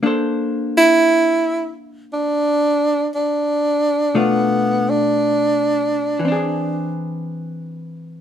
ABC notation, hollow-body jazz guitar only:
X:1
M:4/4
L:1/8
Q:"Swing" 1/4=58
K:Bblyd
V:1 name="Hollow-body jazz guitar"
[B,DAc]8 | [=B,,A,DF]4 [E,^B,D^G]4 |]